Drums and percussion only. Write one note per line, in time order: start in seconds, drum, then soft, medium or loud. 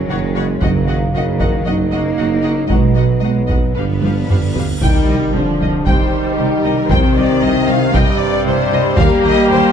0.62 taiko medium
1.40 taiko medium
2.70 taiko medium
3.49 taiko medium
4.03 taiko high medium
4.30 taiko low-mid medium
4.56 taiko low medium
4.82 taiko medium
5.86 taiko medium
6.90 taiko loud
7.94 taiko medium
8.98 taiko loud